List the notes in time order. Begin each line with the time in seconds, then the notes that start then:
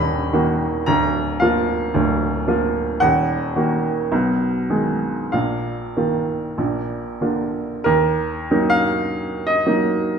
Already playing: D#1 D#2 D#3 A#3 F#4 A#5 B5
0.33 D#3 A#3 F#4
0.86 D1 D2 A#5
1.40 F3 A#3 F4 F5
1.94 D1 D2
2.47 F3 A#3 F4
3.00 D#1 D#2 F#5
3.56 D#3 A#3 F#4
4.12 B1 B2
4.70 D#3 G#3 G#4
5.32 A#1 A#2 F5
5.97 D#3 A#3 F4
6.58 A#1 A#2
7.21 D3 A#3 F4
7.84 D#2 A#4
8.51 F#3 A#3 D#4
8.70 F5
9.47 D#5
9.66 F#3 A#3 D#4